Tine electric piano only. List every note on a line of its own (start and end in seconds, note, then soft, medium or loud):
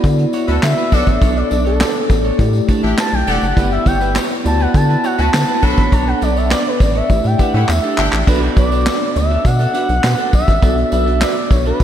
0.00 0.89 B3 medium
0.00 0.90 E4 medium
0.00 0.90 F#4 medium
0.00 0.90 D5 loud
0.91 2.36 B3 medium
0.91 2.36 D4 medium
0.91 2.36 A4 medium
0.91 2.37 C#5 medium
2.38 3.54 A3 medium
2.38 3.54 E4 medium
2.38 3.55 G4 medium
2.38 3.55 D5 medium
3.56 3.63 A3 soft
3.56 4.43 E4 medium
3.56 4.45 G4 medium
3.56 4.44 D5 medium
3.63 4.43 B3 medium
4.44 5.60 B3 medium
4.44 5.60 E4 medium
4.44 5.60 F#4 medium
4.44 5.61 D5 medium
5.62 7.06 B3 medium
5.62 7.07 D4 medium
5.62 7.07 A4 medium
5.62 7.07 C#5 medium
7.09 8.25 A3 medium
7.09 8.25 E4 medium
7.09 8.25 G4 medium
7.09 8.26 D5 medium
8.27 10.58 B3 medium
8.27 10.59 D4 medium
8.27 10.59 F#4 medium
8.27 10.59 A4 medium
8.27 10.59 D5 medium
10.62 11.84 B3 medium
10.62 11.84 D4 medium
10.62 11.84 F#4 medium
10.62 11.84 A4 medium
10.62 11.84 D5 medium